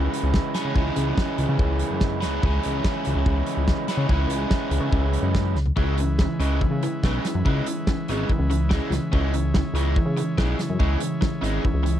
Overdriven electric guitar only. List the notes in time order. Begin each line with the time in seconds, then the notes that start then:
Already playing: C#3 E3 G#3 C#4 E4
0.54 C#3 E3 G#3 C#4 E4
0.75 C#3 E3 G#3 C#4 E4
2.20 C#3 E3 G#3 C#4 E4
2.43 C#3 E3 G#3 C#4 E4
3.88 E3 G#3 C#4 E4
3.93 C#3
4.09 C#3 E3 G#3 C#4 E4
5.76 C#3 E3 G#3
6.00 C#3 E3
6.21 C#3 E3
6.40 C#3 E3 G#3
6.61 C#3 E3
6.83 C#3 E3
7.05 C#3 E3 G#3
7.26 C#3 E3
7.45 C#3 E3 G#3
7.67 C#3 E3
7.88 C#3 E3
8.09 C#3 E3 G#3
8.30 C#3 E3
8.50 C#3 E3
8.69 C#3 E3 G#3
8.92 C#3 E3
9.12 C#3 E3 G#3
9.33 C#3 E3
9.56 C#3 E3
9.75 C#3 E3 G#3
9.96 C#3 E3
10.17 C#3 E3
10.38 C#3 E3 G#3
10.58 C#3 E3
10.80 C#3 E3 G#3
11.00 C#3 E3
11.21 C#3 E3
11.42 C#3 E3 G#3
11.63 C#3 E3
11.83 C#3 E3